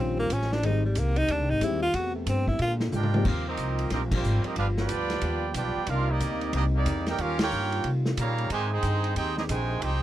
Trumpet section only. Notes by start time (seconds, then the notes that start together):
2.95 F4 A#4 D5 G5
3.27 C4 G4 A#4 F5
3.47 C4 G4 A#4 D#5
3.93 C4 G4 A#4 D#5
4.13 A#3 F4 G4 C5
4.46 C4 G4 A#4 D#5
4.58 D4 G4 B4 F5
4.79 F4 B4 D5 G5
5.56 F4 B4 D5 G5
5.88 D4 G4 A#4 F5
6.09 A#3 G4 D5 D#5
6.54 A#3 D4 G4 D#5
6.75 A#3 D#4 G4 D5
7.08 D#4 A#4 D5 G5
7.20 C#4 G4 A#4 F5
7.41 F4 A#4 C#5 G5
8.19 G4 C#5 F5 A#5
8.51 D#4 G4 C5 G#5
8.72 D#4 G#4 C5 G5
9.17 D#4 G#4 C5 G5
9.37 C4 G4 G#4 D#5
9.49 D#4 C5 G5 G#5
9.83 D#4 G#4 C5 G5